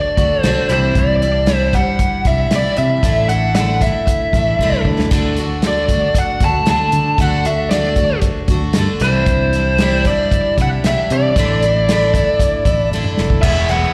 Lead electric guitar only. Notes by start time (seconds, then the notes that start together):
Already playing: D5
0.42 C5
0.73 C5
0.98 D5
1.55 C5
1.75 F#5
2.27 E5
2.55 D5
2.78 E5
3.29 F#5
3.56 F#5
3.82 E5
5.67 D5
6.18 F#5
6.45 A5
6.70 A5
7.21 F#5
7.46 E5
7.70 D5
9.02 C5
10.07 D5
10.61 F#5
10.86 E5
11.13 D5
13.42 E5
13.69 F#5